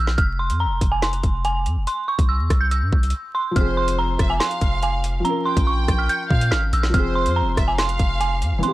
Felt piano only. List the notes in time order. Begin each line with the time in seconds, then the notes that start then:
3.51 F3
3.56 C4
3.60 G#4
5.20 F3
5.25 C#4
5.29 A#4
6.90 F3
6.94 C4
6.99 G#4
8.59 E3
8.63 C4
8.68 G4